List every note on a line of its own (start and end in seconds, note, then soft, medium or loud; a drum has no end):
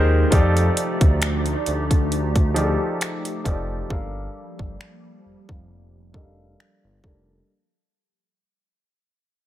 0.00 0.24 D#2 medium
0.00 0.28 C3 medium
0.00 0.34 D#3 medium
0.00 0.28 G#3 medium
0.00 0.28 A#3 medium
0.00 0.31 D#4 medium
0.00 0.30 F4 medium
0.00 0.33 G4 medium
0.00 0.34 G#4 medium
0.00 0.34 A#4 medium
0.00 0.34 B4 medium
0.00 0.34 C5 medium
0.30 0.69 F2 loud
0.30 1.92 F3 medium
0.30 3.87 A3 medium
0.30 1.93 D#4 medium
0.30 3.87 D#4 medium
0.30 1.93 G4 medium
0.30 7.45 G4 medium
0.30 1.94 A4 medium
0.30 3.87 D5 medium
0.30 1.94 D5 medium
0.30 kick loud
0.30 closed hi-hat medium
0.57 closed hi-hat soft
0.77 closed hi-hat medium
1.01 1.55 D2 medium
1.01 kick medium
1.01 closed hi-hat soft
1.22 finger snap loud
1.22 closed hi-hat medium
1.46 closed hi-hat medium
1.66 2.77 D2 medium
1.66 closed hi-hat medium
1.91 kick medium
1.91 closed hi-hat soft
2.12 closed hi-hat medium
2.36 kick medium
2.36 closed hi-hat soft
2.54 3.36 F3 medium
2.54 3.36 D#4 medium
2.54 3.37 G4 medium
2.54 2.64 G#4 medium
2.54 3.38 D5 medium
2.54 closed hi-hat medium
2.64 3.40 A4 medium
3.01 finger snap loud
3.01 closed hi-hat medium
3.25 closed hi-hat medium
3.44 3.83 F1 medium
3.44 3.85 F3 medium
3.44 3.86 D#4 medium
3.44 3.86 G4 medium
3.44 3.86 A4 medium
3.44 3.87 D5 medium
3.44 kick medium
3.44 closed hi-hat medium
3.89 4.28 G1 loud
3.89 7.45 F3 medium
3.89 5.51 G3 medium
3.89 7.45 G3 medium
3.89 7.45 A#3 medium
3.89 5.51 D4 medium
3.89 5.52 A4 medium
3.89 5.52 A#4 medium
3.89 5.52 F5 medium
3.89 kick loud
4.59 4.76 G1 medium
4.59 kick medium
4.81 finger snap loud
5.25 5.35 F1 soft
5.49 6.55 F1 medium
5.49 kick medium
6.13 6.94 G3 medium
6.13 6.94 D4 medium
6.13 6.95 A4 medium
6.13 6.96 A#4 medium
6.13 6.22 D#5 medium
6.13 kick medium
6.23 6.99 F5 medium
6.60 finger snap loud
6.84 7.01 G1 medium
7.03 7.41 F1 medium
7.03 7.43 G3 medium
7.03 7.44 D4 medium
7.03 7.44 A4 medium
7.03 7.45 A#4 medium
7.03 7.45 D5 medium
7.03 kick medium